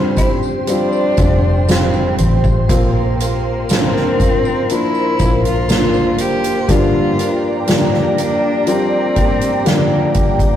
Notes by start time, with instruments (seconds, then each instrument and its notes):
Already playing: fingered electric bass F1, steel-string acoustic guitar F3 G3 C4 F4 G4, felt piano F3 G3 C4 C#4 D4, french horn section C4, ambient pad G4 C5 C6
0.16 steel-string acoustic guitar C4 G4, cello E4, ambient pad G5, kick, closed hi-hat, tambourine
0.43 tambourine
0.66 felt piano F3 G3 C4, steel-string acoustic guitar G3 C4 F4 G4, cello D4, closed hi-hat, tambourine
0.92 tambourine
1.17 fingered electric bass F1, felt piano F3 G3 C4, steel-string acoustic guitar C4 F4 G4, kick, closed hi-hat, tambourine
1.67 steel-string acoustic guitar F3 G3 C4 F4 G4, felt piano F3 G3 C4, cello C4, snare, closed hi-hat, tambourine
1.93 tambourine
2.18 fingered electric bass A1, kick, closed hi-hat, tambourine
2.44 kick, tambourine
2.69 fingered electric bass A#1, felt piano A#2 F3 A#3 C4, steel-string acoustic guitar A#3 C4 F4 A#4, cello A#3, ambient pad A#4, kick, closed hi-hat, tambourine
3.19 steel-string acoustic guitar C4 F4 A#4, closed hi-hat, tambourine
3.69 felt piano F3 A#3 C#4, steel-string acoustic guitar A#3 C4 F4 A#4, cello C4, snare, closed hi-hat, tambourine
3.77 felt piano D4
3.96 snare
4.19 steel-string acoustic guitar C4 F4 A#4, kick, closed hi-hat, tambourine
4.45 tambourine
4.69 felt piano F3 A#3 D4, steel-string acoustic guitar A#3 C4 A#4, cello E4, closed hi-hat, tambourine
4.95 tambourine
5.19 fingered electric bass A#1, felt piano F3 A#3 C4, steel-string acoustic guitar C4 F4 A#4, kick, closed hi-hat, tambourine
5.45 cello F4, closed hi-hat
5.68 felt piano F3 A#3 D4, steel-string acoustic guitar A#3 C4 F4 A#4, snare, closed hi-hat, tambourine
5.94 tambourine
6.18 fingered electric bass F1, cello G4, closed hi-hat, tambourine
6.44 closed hi-hat, tambourine
6.68 steel-string acoustic guitar G2 D3 F3 A#3 D4 G4, felt piano G2 F3 G3 A#3 D4 G4, cello F4, ambient pad G4 D5 G5 A#5, kick, closed hi-hat
7.18 steel-string acoustic guitar F3 A#3 D4 G4, closed hi-hat
7.67 steel-string acoustic guitar G2 D3 F3 A#3 D4 G4, felt piano F3 G3 A#3 D4 F4, snare, closed hi-hat
7.94 snare
8.17 steel-string acoustic guitar F3 A#3 D4 G4, cello D4, closed hi-hat
8.66 felt piano F3 G3 A#3 D4 G4, steel-string acoustic guitar F3 A#3 D4 G4, cello C4, closed hi-hat
9.15 felt piano F3 G3 A#3 D4 G4, steel-string acoustic guitar F3 A#3 D4 G4, kick, closed hi-hat
9.41 closed hi-hat
9.65 steel-string acoustic guitar G2 D3 F3 A#3 D4 G4, felt piano F3 G3 A#3 D4 G4, cello A#3, snare, closed hi-hat
10.14 kick, closed hi-hat
10.39 kick, closed hi-hat